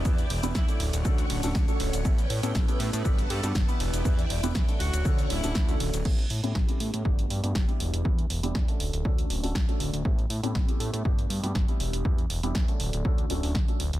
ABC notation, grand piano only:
X:1
M:4/4
L:1/16
Q:"Swing 16ths" 1/4=120
K:Amix
V:1 name="Grand piano"
[B,DEGB] z2 [B,DEGB]2 [A,CDFA]3 [A,CDFA]3 [A,CDFA]2 [A,CDFA]3 | [B,CEGA] z2 [B,CEGA]2 [B,CEGA]3 [B,DFGA]3 [B,DFGA]2 [B,DEGB]3 | [B,DEGB] z2 [B,DEGB]2 [A,CDFA]3 [A,CDFA]3 [A,CDFA]2 [A,CDFA]3 | [A,B,CEG] z2 [A,B,CEG]2 [A,B,CEG]3 [A,B,DFG]3 [A,B,DFG]2 [G,B,DEG]3 |
[G,B,DEG] z2 [G,B,DEG]2 [A,CDFA]3 [A,CDFA]3 [A,CDFA]2 [A,CDFA]3 | [A,B,CEG] z2 [A,B,CEG]2 [A,B,CEG]3 [A,B,DFG]3 [A,B,DFG]2 [G,B,DEG]3 | [G,B,DEG] z2 [G,B,DEG]2 [A,CDFA]3 [A,CDFA]2 [A,CDFA]2 z [A,CDFA] z2 |]